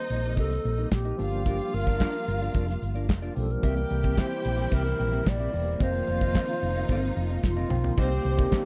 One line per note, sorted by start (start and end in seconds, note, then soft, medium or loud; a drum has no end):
0.00 0.21 D#3 medium
0.00 0.21 G3 medium
0.00 0.21 A#3 medium
0.00 0.21 C4 medium
0.00 0.88 D#4 medium
0.00 0.21 G4 medium
0.00 0.38 C5 loud
0.00 0.88 D#5 medium
0.10 0.37 A#1 medium
0.10 muted clean electric guitar stroke soft
0.10 closed hi-hat medium
0.23 0.36 D#4 soft
0.23 0.36 G4 soft
0.23 0.36 A#4 medium
0.23 0.36 D#5 medium
0.23 closed hi-hat soft
0.37 0.57 C2 medium
0.37 0.53 D#4 medium
0.37 0.52 G4 medium
0.37 0.88 A4 loud
0.37 0.51 A#4 medium
0.37 0.51 D#5 medium
0.37 kick loud
0.37 closed hi-hat medium
0.51 muted clean electric guitar stroke soft
0.51 snare soft
0.51 closed hi-hat soft
0.65 0.84 A#1 medium
0.65 muted clean electric guitar stroke soft
0.65 closed hi-hat medium
0.78 0.90 D#4 soft
0.78 0.90 G4 soft
0.78 0.90 A#4 medium
0.78 0.90 D#5 medium
0.78 closed hi-hat medium
0.92 1.11 A#1 medium
0.92 1.43 G4 medium
0.92 kick loud
0.92 snare loud
0.92 clap medium
1.05 1.18 D#4 medium
1.05 1.18 G4 medium
1.05 1.18 A#4 medium
1.05 1.19 D#5 medium
1.05 closed hi-hat soft
1.18 1.58 G1 medium
1.18 2.11 F3 medium
1.18 2.11 G3 medium
1.18 2.11 A#3 medium
1.18 2.11 D4 medium
1.18 3.32 F4 medium
1.18 2.12 G4 medium
1.18 3.32 F5 loud
1.18 muted clean electric guitar stroke soft
1.18 open hi-hat medium
1.33 muted clean electric guitar stroke soft
1.33 closed hi-hat soft
1.46 1.61 D4 medium
1.46 1.59 F4 medium
1.46 1.76 G4 medium
1.46 1.59 A#4 medium
1.46 1.58 D5 medium
1.46 kick loud
1.46 closed hi-hat medium
1.59 muted clean electric guitar stroke soft
1.59 closed hi-hat soft
1.73 2.03 G1 medium
1.73 2.82 A#4 medium
1.73 muted clean electric guitar stroke soft
1.73 closed hi-hat medium
1.87 1.99 D4 medium
1.87 1.99 F4 medium
1.87 1.99 A#4 medium
1.87 1.99 D5 medium
1.87 kick medium
1.87 closed hi-hat soft
2.00 2.15 D4 medium
2.00 2.14 F4 medium
2.00 2.14 A#4 medium
2.00 2.13 D5 medium
2.00 kick loud
2.00 snare medium
2.00 clap medium
2.13 muted clean electric guitar stroke soft
2.13 closed hi-hat medium
2.28 2.47 G1 medium
2.28 muted clean electric guitar stroke soft
2.28 closed hi-hat medium
2.41 2.54 D4 medium
2.41 2.53 F4 medium
2.41 2.53 A#4 medium
2.41 2.53 D5 medium
2.41 closed hi-hat soft
2.54 2.74 F1 medium
2.54 2.70 D4 medium
2.54 2.68 F4 medium
2.54 2.68 A#4 medium
2.54 2.67 D5 medium
2.54 kick loud
2.54 closed hi-hat medium
2.68 muted clean electric guitar stroke medium
2.68 snare soft
2.68 closed hi-hat soft
2.82 3.09 G1 medium
2.82 muted clean electric guitar stroke soft
2.82 closed hi-hat medium
2.95 3.08 D4 medium
2.95 3.07 F4 soft
2.95 3.07 A#4 medium
2.95 3.07 D5 medium
2.95 closed hi-hat soft
3.09 3.29 F1 medium
3.09 muted clean electric guitar stroke soft
3.09 kick loud
3.09 snare loud
3.09 clap medium
3.22 3.35 D4 medium
3.22 3.35 F4 medium
3.22 3.36 A#4 medium
3.22 3.35 D5 medium
3.22 closed hi-hat soft
3.35 3.56 B1 medium
3.35 3.58 F3 medium
3.35 3.59 G3 medium
3.35 3.59 A#3 medium
3.35 3.59 D4 medium
3.35 3.59 G4 medium
3.35 3.53 A4 medium
3.35 muted clean electric guitar stroke soft
3.35 open hi-hat medium
3.50 4.22 A#4 medium
3.50 muted clean electric guitar stroke soft
3.50 closed hi-hat soft
3.62 3.83 C2 loud
3.62 7.94 C3 medium
3.62 4.55 E3 medium
3.62 5.79 E3 medium
3.62 4.55 G3 medium
3.62 5.79 G3 medium
3.62 4.56 A#3 medium
3.62 7.94 A#3 medium
3.62 4.56 C4 medium
3.62 3.78 C4 medium
3.62 5.79 E4 medium
3.62 3.70 F#4 medium
3.62 3.77 G4 medium
3.62 5.50 G4 medium
3.62 3.76 A#4 medium
3.62 3.75 E5 medium
3.62 5.50 G5 medium
3.62 kick loud
3.62 closed hi-hat medium
3.70 4.59 G4 medium
3.76 muted clean electric guitar stroke medium
3.76 closed hi-hat soft
3.90 4.20 C2 medium
3.90 muted clean electric guitar stroke soft
3.90 closed hi-hat medium
4.04 4.16 C4 medium
4.04 4.16 G4 medium
4.04 4.16 A#4 medium
4.04 4.16 E5 medium
4.04 kick loud
4.04 closed hi-hat soft
4.17 4.32 C4 medium
4.17 4.30 G4 medium
4.17 4.29 A#4 medium
4.17 4.75 C5 medium
4.17 4.29 E5 medium
4.17 kick loud
4.17 snare loud
4.17 clap medium
4.30 muted clean electric guitar stroke soft
4.30 closed hi-hat medium
4.44 4.65 A#1 medium
4.44 muted clean electric guitar stroke medium
4.44 closed hi-hat medium
4.57 4.70 C4 soft
4.57 4.70 G4 medium
4.57 4.70 A#4 medium
4.57 4.69 E5 medium
4.57 closed hi-hat soft
4.71 4.91 C2 loud
4.71 4.87 C4 medium
4.71 4.84 G4 medium
4.71 4.84 A#4 loud
4.71 5.30 A#4 loud
4.71 4.84 E5 loud
4.71 kick loud
4.71 closed hi-hat medium
4.85 muted clean electric guitar stroke soft
4.85 snare soft
4.85 closed hi-hat soft
4.98 5.19 A#1 medium
4.98 muted clean electric guitar stroke soft
4.98 closed hi-hat medium
5.12 5.24 C4 medium
5.12 5.24 G4 medium
5.12 5.24 A#4 medium
5.12 5.24 E5 medium
5.12 closed hi-hat medium
5.26 5.46 A#1 medium
5.26 5.84 D5 loud
5.26 kick loud
5.26 snare loud
5.26 clap medium
5.40 5.52 C4 medium
5.40 5.52 G4 medium
5.40 5.52 A#4 medium
5.40 5.53 E5 medium
5.40 closed hi-hat soft
5.52 5.73 E1 medium
5.52 5.76 E3 medium
5.52 5.76 G3 medium
5.52 5.76 A#3 medium
5.52 5.76 C4 medium
5.52 5.77 G4 medium
5.52 open hi-hat medium
5.66 muted clean electric guitar stroke medium
5.66 closed hi-hat soft
5.79 6.00 F1 loud
5.79 6.72 D#3 medium
5.79 7.96 D#3 medium
5.79 6.73 F3 medium
5.79 7.96 F3 medium
5.79 6.73 A#3 medium
5.79 5.95 C4 medium
5.79 6.73 C4 medium
5.79 7.96 D#4 medium
5.79 5.93 F4 medium
5.79 7.67 F4 medium
5.79 6.73 F4 medium
5.79 5.93 A#4 medium
5.79 5.92 D#5 medium
5.79 7.67 F5 medium
5.79 kick loud
5.79 closed hi-hat medium
5.83 7.17 C5 loud
5.94 muted clean electric guitar stroke soft
5.94 closed hi-hat soft
6.07 6.37 F1 medium
6.07 muted clean electric guitar stroke soft
6.07 closed hi-hat medium
6.21 6.34 C4 soft
6.21 6.34 F4 medium
6.21 6.33 A#4 medium
6.21 6.33 D#5 medium
6.21 kick medium
6.21 closed hi-hat soft
6.35 6.50 C4 medium
6.35 6.48 F4 medium
6.35 6.48 A#4 medium
6.35 6.48 D#5 medium
6.35 kick loud
6.35 snare loud
6.35 clap medium
6.48 muted clean electric guitar stroke soft
6.48 closed hi-hat medium
6.62 6.82 F1 medium
6.62 muted clean electric guitar stroke soft
6.62 closed hi-hat medium
6.75 6.89 C4 medium
6.75 6.88 F4 medium
6.75 6.88 A#4 medium
6.75 6.88 D#5 medium
6.75 closed hi-hat soft
6.89 7.09 G1 medium
6.89 7.10 C4 medium
6.89 7.03 F4 medium
6.89 7.03 A#4 medium
6.89 7.02 D#5 medium
6.89 kick loud
6.89 closed hi-hat medium
7.02 muted clean electric guitar stroke medium
7.02 closed hi-hat soft
7.17 7.36 F1 medium
7.17 muted clean electric guitar stroke soft
7.17 closed hi-hat medium
7.29 7.42 C4 medium
7.29 7.42 F4 soft
7.29 7.42 A#4 medium
7.29 7.42 D#5 medium
7.29 closed hi-hat soft
7.44 7.63 F1 loud
7.44 8.02 F4 medium
7.44 kick loud
7.44 snare medium
7.57 7.69 C4 medium
7.57 7.70 F4 medium
7.57 7.70 A#4 medium
7.57 7.70 D#5 medium
7.57 high tom medium
7.69 7.90 B1 medium
7.69 7.93 D#3 medium
7.69 7.93 F3 medium
7.69 7.94 A#3 medium
7.69 7.94 C4 medium
7.69 7.94 F4 loud
7.69 mid tom medium
7.84 muted clean electric guitar stroke soft
7.84 floor tom medium
7.97 8.17 C2 loud
7.97 8.65 C3 medium
7.97 8.32 D#3 medium
7.97 8.65 D#3 medium
7.97 8.32 G3 medium
7.97 8.65 G3 medium
7.97 8.33 A#3 medium
7.97 8.65 A#3 medium
7.97 8.65 C4 loud
7.97 8.33 C4 medium
7.97 8.49 C4 medium
7.97 8.13 D#4 medium
7.97 8.11 G4 medium
7.97 8.33 G4 medium
7.97 8.65 G4 medium
7.97 8.11 A#4 loud
7.97 8.49 C5 loud
7.97 8.10 D#5 loud
7.97 kick loud
7.97 crash loud
8.11 closed hi-hat medium
8.25 8.44 C2 medium
8.25 muted clean electric guitar stroke soft
8.25 closed hi-hat medium
8.38 8.50 D#3 medium
8.38 8.50 G3 medium
8.38 8.50 A#3 medium
8.38 8.50 C4 medium
8.38 8.50 D#4 medium
8.38 8.50 G4 medium
8.38 8.51 G4 medium
8.38 8.50 A#4 medium
8.38 8.50 D#5 medium
8.38 kick loud
8.38 closed hi-hat soft
8.51 8.65 D#3 medium
8.51 8.65 G3 medium
8.51 8.65 A#3 medium
8.51 8.65 C4 medium
8.51 8.65 D4 medium
8.51 8.65 D#4 medium
8.51 8.65 G4 medium
8.51 8.64 A#4 loud
8.51 8.64 D#5 medium
8.51 kick loud
8.51 snare loud
8.51 clap medium